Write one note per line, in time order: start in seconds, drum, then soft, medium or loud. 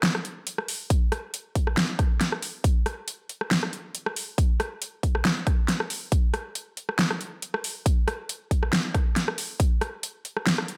0.03 snare loud
0.03 closed hi-hat medium
0.15 cross-stick medium
0.25 closed hi-hat medium
0.47 closed hi-hat medium
0.58 cross-stick medium
0.68 open hi-hat loud
0.90 kick loud
0.90 closed hi-hat medium
1.12 cross-stick medium
1.12 closed hi-hat medium
1.34 closed hi-hat medium
1.55 kick medium
1.55 closed hi-hat medium
1.67 cross-stick soft
1.77 snare loud
1.77 closed hi-hat medium
1.99 kick loud
1.99 cross-stick medium
1.99 closed hi-hat medium
2.21 snare medium
2.21 closed hi-hat medium
2.32 cross-stick medium
2.42 open hi-hat loud
2.64 kick loud
2.64 closed hi-hat medium
2.86 cross-stick medium
2.86 closed hi-hat soft
3.08 closed hi-hat medium
3.29 closed hi-hat medium
3.41 cross-stick medium
3.51 snare loud
3.51 closed hi-hat medium
3.63 cross-stick medium
3.73 closed hi-hat medium
3.95 closed hi-hat medium
4.06 cross-stick medium
4.16 open hi-hat medium
4.38 kick loud
4.38 closed hi-hat medium
4.60 cross-stick medium
4.60 closed hi-hat medium
4.82 closed hi-hat medium
5.03 kick medium
5.03 closed hi-hat medium
5.15 cross-stick medium
5.25 snare loud
5.25 closed hi-hat medium
5.47 kick loud
5.47 cross-stick medium
5.47 closed hi-hat soft
5.68 snare medium
5.68 closed hi-hat medium
5.80 cross-stick medium
5.90 open hi-hat medium
6.12 kick loud
6.12 closed hi-hat medium
6.34 cross-stick medium
6.34 closed hi-hat soft
6.55 closed hi-hat medium
6.77 closed hi-hat medium
6.89 cross-stick medium
6.99 snare loud
6.99 closed hi-hat medium
7.11 cross-stick medium
7.21 closed hi-hat soft
7.42 closed hi-hat medium
7.54 cross-stick medium
7.64 open hi-hat medium
7.86 kick loud
7.86 closed hi-hat medium
8.08 cross-stick medium
8.08 closed hi-hat soft
8.29 closed hi-hat medium
8.51 kick medium
8.51 closed hi-hat medium
8.63 cross-stick medium
8.73 snare loud
8.73 closed hi-hat medium
8.95 kick loud
8.95 cross-stick medium
8.95 closed hi-hat medium
9.16 snare medium
9.16 closed hi-hat medium
9.28 cross-stick medium
9.38 open hi-hat loud
9.60 kick loud
9.60 closed hi-hat medium
9.81 cross-stick medium
9.81 closed hi-hat medium
10.03 closed hi-hat medium
10.25 closed hi-hat medium
10.37 cross-stick medium
10.47 snare loud
10.47 closed hi-hat medium
10.58 cross-stick medium
10.68 closed hi-hat medium